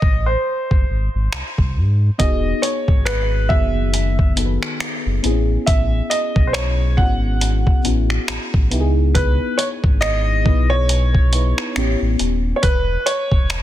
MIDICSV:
0, 0, Header, 1, 5, 480
1, 0, Start_track
1, 0, Key_signature, 4, "major"
1, 0, Tempo, 869565
1, 1212, Time_signature, 4, 2, 24, 8
1, 7520, End_track
2, 0, Start_track
2, 0, Title_t, "Grand piano"
2, 0, Program_c, 0, 0
2, 0, Note_on_c, 0, 75, 109
2, 126, Note_off_c, 0, 75, 0
2, 145, Note_on_c, 0, 72, 75
2, 947, Note_off_c, 0, 72, 0
2, 1208, Note_on_c, 0, 75, 83
2, 1447, Note_on_c, 0, 73, 76
2, 1457, Note_off_c, 0, 75, 0
2, 1672, Note_off_c, 0, 73, 0
2, 1686, Note_on_c, 0, 71, 85
2, 1926, Note_on_c, 0, 76, 86
2, 1936, Note_off_c, 0, 71, 0
2, 2387, Note_off_c, 0, 76, 0
2, 3127, Note_on_c, 0, 76, 82
2, 3367, Note_on_c, 0, 75, 78
2, 3376, Note_off_c, 0, 76, 0
2, 3573, Note_on_c, 0, 72, 63
2, 3583, Note_off_c, 0, 75, 0
2, 3606, Note_on_c, 0, 73, 82
2, 3609, Note_off_c, 0, 72, 0
2, 3832, Note_off_c, 0, 73, 0
2, 3848, Note_on_c, 0, 78, 89
2, 4308, Note_off_c, 0, 78, 0
2, 5048, Note_on_c, 0, 71, 86
2, 5286, Note_on_c, 0, 73, 86
2, 5297, Note_off_c, 0, 71, 0
2, 5340, Note_off_c, 0, 73, 0
2, 5524, Note_on_c, 0, 75, 104
2, 5905, Note_on_c, 0, 73, 91
2, 5919, Note_off_c, 0, 75, 0
2, 6606, Note_off_c, 0, 73, 0
2, 6934, Note_on_c, 0, 73, 70
2, 6969, Note_off_c, 0, 73, 0
2, 6970, Note_on_c, 0, 71, 97
2, 7209, Note_on_c, 0, 73, 97
2, 7218, Note_off_c, 0, 71, 0
2, 7520, Note_off_c, 0, 73, 0
2, 7520, End_track
3, 0, Start_track
3, 0, Title_t, "FM electric piano"
3, 0, Program_c, 1, 5
3, 1205, Note_on_c, 1, 59, 86
3, 1211, Note_on_c, 1, 63, 82
3, 1217, Note_on_c, 1, 66, 83
3, 1223, Note_on_c, 1, 68, 101
3, 1310, Control_c, 1, 64, 127
3, 1874, Note_off_c, 1, 59, 0
3, 1877, Note_off_c, 1, 63, 0
3, 1880, Note_off_c, 1, 66, 0
3, 1883, Note_off_c, 1, 68, 0
3, 1926, Note_on_c, 1, 59, 72
3, 1932, Note_on_c, 1, 51, 63
3, 1938, Note_on_c, 1, 66, 61
3, 1944, Note_on_c, 1, 68, 76
3, 2372, Note_off_c, 1, 59, 0
3, 2376, Note_off_c, 1, 51, 0
3, 2379, Note_off_c, 1, 66, 0
3, 2382, Note_off_c, 1, 68, 0
3, 2405, Note_on_c, 1, 59, 66
3, 2412, Note_on_c, 1, 63, 58
3, 2418, Note_on_c, 1, 66, 56
3, 2424, Note_on_c, 1, 69, 55
3, 2459, Note_off_c, 1, 69, 0
3, 2461, Note_on_c, 1, 71, 72
3, 2880, Note_off_c, 1, 59, 0
3, 2886, Note_on_c, 1, 59, 95
3, 2892, Note_off_c, 1, 63, 0
3, 2892, Note_on_c, 1, 60, 67
3, 2895, Note_off_c, 1, 66, 0
3, 2898, Control_c, 1, 64, 0
3, 2898, Note_on_c, 1, 64, 83
3, 2905, Note_on_c, 1, 68, 102
3, 2916, Note_off_c, 1, 71, 0
3, 2928, Note_on_c, 1, 61, 84
3, 2934, Note_off_c, 1, 60, 0
3, 2983, Control_c, 1, 64, 127
3, 3776, Note_off_c, 1, 59, 0
3, 3783, Note_off_c, 1, 64, 0
3, 3786, Note_off_c, 1, 68, 0
3, 3797, Note_off_c, 1, 61, 0
3, 3846, Note_on_c, 1, 59, 74
3, 3852, Note_on_c, 1, 61, 63
3, 3858, Note_on_c, 1, 64, 65
3, 3865, Note_on_c, 1, 66, 77
3, 4293, Note_off_c, 1, 59, 0
3, 4296, Note_off_c, 1, 61, 0
3, 4299, Note_off_c, 1, 64, 0
3, 4302, Note_off_c, 1, 66, 0
3, 4326, Note_on_c, 1, 59, 66
3, 4333, Note_on_c, 1, 61, 60
3, 4339, Note_on_c, 1, 64, 63
3, 4345, Note_on_c, 1, 66, 71
3, 4799, Note_off_c, 1, 59, 0
3, 4806, Note_on_c, 1, 59, 93
3, 4811, Note_off_c, 1, 64, 0
3, 4811, Note_on_c, 1, 63, 82
3, 4812, Note_off_c, 1, 61, 0
3, 4818, Note_off_c, 1, 66, 0
3, 4818, Note_on_c, 1, 64, 86
3, 4819, Control_c, 1, 64, 0
3, 4824, Note_on_c, 1, 67, 82
3, 4860, Note_off_c, 1, 67, 0
3, 4860, Note_on_c, 1, 68, 100
3, 4900, Control_c, 1, 64, 127
3, 5696, Note_off_c, 1, 59, 0
3, 5699, Note_off_c, 1, 63, 0
3, 5702, Note_off_c, 1, 64, 0
3, 5723, Note_off_c, 1, 68, 0
3, 5767, Note_on_c, 1, 59, 72
3, 5773, Note_on_c, 1, 63, 65
3, 5779, Note_on_c, 1, 64, 67
3, 5786, Note_on_c, 1, 71, 78
3, 6213, Note_off_c, 1, 59, 0
3, 6216, Note_off_c, 1, 63, 0
3, 6219, Note_off_c, 1, 64, 0
3, 6222, Note_off_c, 1, 71, 0
3, 6246, Note_on_c, 1, 59, 65
3, 6252, Note_on_c, 1, 63, 58
3, 6259, Note_on_c, 1, 64, 59
3, 6265, Note_on_c, 1, 71, 72
3, 6481, Note_off_c, 1, 59, 0
3, 6488, Note_on_c, 1, 59, 89
3, 6492, Note_off_c, 1, 63, 0
3, 6494, Note_off_c, 1, 64, 0
3, 6494, Note_on_c, 1, 61, 79
3, 6498, Note_off_c, 1, 71, 0
3, 6500, Control_c, 1, 64, 0
3, 6500, Note_on_c, 1, 64, 75
3, 6506, Note_on_c, 1, 67, 96
3, 6580, Control_c, 1, 64, 127
3, 6933, Note_off_c, 1, 59, 0
3, 6936, Note_off_c, 1, 61, 0
3, 6940, Note_off_c, 1, 64, 0
3, 6943, Note_off_c, 1, 67, 0
3, 6980, Control_c, 1, 64, 0
3, 7075, Control_c, 1, 64, 127
3, 7520, End_track
4, 0, Start_track
4, 0, Title_t, "Sub bass"
4, 0, Program_c, 2, 38
4, 13, Note_on_c, 2, 33, 90
4, 199, Note_off_c, 2, 33, 0
4, 393, Note_on_c, 2, 30, 86
4, 471, Note_off_c, 2, 30, 0
4, 494, Note_on_c, 2, 32, 79
4, 601, Note_off_c, 2, 32, 0
4, 633, Note_on_c, 2, 32, 83
4, 711, Note_off_c, 2, 32, 0
4, 734, Note_on_c, 2, 36, 46
4, 789, Note_off_c, 2, 36, 0
4, 874, Note_on_c, 2, 36, 81
4, 974, Note_on_c, 2, 44, 100
4, 982, Note_off_c, 2, 36, 0
4, 1159, Note_off_c, 2, 44, 0
4, 1213, Note_on_c, 2, 28, 106
4, 1399, Note_off_c, 2, 28, 0
4, 1591, Note_on_c, 2, 32, 75
4, 1933, Note_on_c, 2, 30, 93
4, 1941, Note_off_c, 2, 32, 0
4, 2529, Note_off_c, 2, 30, 0
4, 2793, Note_on_c, 2, 30, 88
4, 2870, Note_off_c, 2, 30, 0
4, 2894, Note_on_c, 2, 33, 92
4, 3079, Note_off_c, 2, 33, 0
4, 3133, Note_on_c, 2, 33, 107
4, 3319, Note_off_c, 2, 33, 0
4, 3511, Note_on_c, 2, 35, 84
4, 3853, Note_on_c, 2, 32, 91
4, 3861, Note_off_c, 2, 35, 0
4, 4225, Note_off_c, 2, 32, 0
4, 4334, Note_on_c, 2, 33, 82
4, 4520, Note_off_c, 2, 33, 0
4, 4574, Note_on_c, 2, 33, 46
4, 4629, Note_off_c, 2, 33, 0
4, 4714, Note_on_c, 2, 33, 88
4, 4814, Note_on_c, 2, 37, 103
4, 4822, Note_off_c, 2, 33, 0
4, 5186, Note_off_c, 2, 37, 0
4, 5431, Note_on_c, 2, 32, 79
4, 5773, Note_on_c, 2, 35, 91
4, 5781, Note_off_c, 2, 32, 0
4, 6369, Note_off_c, 2, 35, 0
4, 6494, Note_on_c, 2, 33, 100
4, 6601, Note_off_c, 2, 33, 0
4, 6633, Note_on_c, 2, 33, 89
4, 6711, Note_off_c, 2, 33, 0
4, 6734, Note_on_c, 2, 27, 92
4, 6919, Note_off_c, 2, 27, 0
4, 6973, Note_on_c, 2, 28, 107
4, 7159, Note_off_c, 2, 28, 0
4, 7351, Note_on_c, 2, 28, 79
4, 7520, Note_off_c, 2, 28, 0
4, 7520, End_track
5, 0, Start_track
5, 0, Title_t, "Drums"
5, 12, Note_on_c, 9, 36, 93
5, 68, Note_off_c, 9, 36, 0
5, 392, Note_on_c, 9, 36, 78
5, 447, Note_off_c, 9, 36, 0
5, 731, Note_on_c, 9, 26, 104
5, 787, Note_off_c, 9, 26, 0
5, 874, Note_on_c, 9, 36, 82
5, 929, Note_off_c, 9, 36, 0
5, 1212, Note_on_c, 9, 42, 66
5, 1213, Note_on_c, 9, 36, 105
5, 1267, Note_off_c, 9, 42, 0
5, 1268, Note_off_c, 9, 36, 0
5, 1453, Note_on_c, 9, 42, 74
5, 1508, Note_off_c, 9, 42, 0
5, 1590, Note_on_c, 9, 36, 84
5, 1645, Note_off_c, 9, 36, 0
5, 1691, Note_on_c, 9, 42, 64
5, 1693, Note_on_c, 9, 26, 105
5, 1747, Note_off_c, 9, 42, 0
5, 1748, Note_off_c, 9, 26, 0
5, 1932, Note_on_c, 9, 36, 87
5, 1988, Note_off_c, 9, 36, 0
5, 2173, Note_on_c, 9, 42, 73
5, 2228, Note_off_c, 9, 42, 0
5, 2312, Note_on_c, 9, 36, 73
5, 2367, Note_off_c, 9, 36, 0
5, 2412, Note_on_c, 9, 42, 58
5, 2467, Note_off_c, 9, 42, 0
5, 2553, Note_on_c, 9, 26, 62
5, 2608, Note_off_c, 9, 26, 0
5, 2652, Note_on_c, 9, 26, 105
5, 2652, Note_on_c, 9, 42, 62
5, 2707, Note_off_c, 9, 26, 0
5, 2708, Note_off_c, 9, 42, 0
5, 2891, Note_on_c, 9, 42, 52
5, 2947, Note_off_c, 9, 42, 0
5, 3132, Note_on_c, 9, 42, 72
5, 3133, Note_on_c, 9, 36, 103
5, 3187, Note_off_c, 9, 42, 0
5, 3188, Note_off_c, 9, 36, 0
5, 3373, Note_on_c, 9, 42, 77
5, 3429, Note_off_c, 9, 42, 0
5, 3510, Note_on_c, 9, 36, 86
5, 3566, Note_off_c, 9, 36, 0
5, 3612, Note_on_c, 9, 42, 64
5, 3613, Note_on_c, 9, 26, 106
5, 3667, Note_off_c, 9, 42, 0
5, 3668, Note_off_c, 9, 26, 0
5, 3852, Note_on_c, 9, 36, 84
5, 3907, Note_off_c, 9, 36, 0
5, 4093, Note_on_c, 9, 42, 76
5, 4148, Note_off_c, 9, 42, 0
5, 4232, Note_on_c, 9, 36, 74
5, 4287, Note_off_c, 9, 36, 0
5, 4332, Note_on_c, 9, 42, 56
5, 4387, Note_off_c, 9, 42, 0
5, 4472, Note_on_c, 9, 26, 62
5, 4527, Note_off_c, 9, 26, 0
5, 4571, Note_on_c, 9, 26, 101
5, 4572, Note_on_c, 9, 42, 61
5, 4627, Note_off_c, 9, 26, 0
5, 4627, Note_off_c, 9, 42, 0
5, 4714, Note_on_c, 9, 36, 85
5, 4769, Note_off_c, 9, 36, 0
5, 4810, Note_on_c, 9, 42, 51
5, 4866, Note_off_c, 9, 42, 0
5, 5052, Note_on_c, 9, 36, 102
5, 5052, Note_on_c, 9, 42, 66
5, 5107, Note_off_c, 9, 36, 0
5, 5107, Note_off_c, 9, 42, 0
5, 5292, Note_on_c, 9, 42, 79
5, 5348, Note_off_c, 9, 42, 0
5, 5430, Note_on_c, 9, 36, 88
5, 5485, Note_off_c, 9, 36, 0
5, 5531, Note_on_c, 9, 42, 63
5, 5533, Note_on_c, 9, 26, 103
5, 5586, Note_off_c, 9, 42, 0
5, 5588, Note_off_c, 9, 26, 0
5, 5772, Note_on_c, 9, 36, 93
5, 5827, Note_off_c, 9, 36, 0
5, 6012, Note_on_c, 9, 42, 76
5, 6068, Note_off_c, 9, 42, 0
5, 6152, Note_on_c, 9, 36, 75
5, 6208, Note_off_c, 9, 36, 0
5, 6252, Note_on_c, 9, 42, 58
5, 6307, Note_off_c, 9, 42, 0
5, 6392, Note_on_c, 9, 26, 64
5, 6448, Note_off_c, 9, 26, 0
5, 6491, Note_on_c, 9, 26, 104
5, 6492, Note_on_c, 9, 42, 62
5, 6547, Note_off_c, 9, 26, 0
5, 6547, Note_off_c, 9, 42, 0
5, 6731, Note_on_c, 9, 42, 54
5, 6786, Note_off_c, 9, 42, 0
5, 6971, Note_on_c, 9, 42, 70
5, 6973, Note_on_c, 9, 36, 96
5, 7027, Note_off_c, 9, 42, 0
5, 7028, Note_off_c, 9, 36, 0
5, 7213, Note_on_c, 9, 42, 78
5, 7268, Note_off_c, 9, 42, 0
5, 7350, Note_on_c, 9, 36, 83
5, 7405, Note_off_c, 9, 36, 0
5, 7451, Note_on_c, 9, 42, 65
5, 7453, Note_on_c, 9, 26, 111
5, 7506, Note_off_c, 9, 42, 0
5, 7508, Note_off_c, 9, 26, 0
5, 7520, End_track
0, 0, End_of_file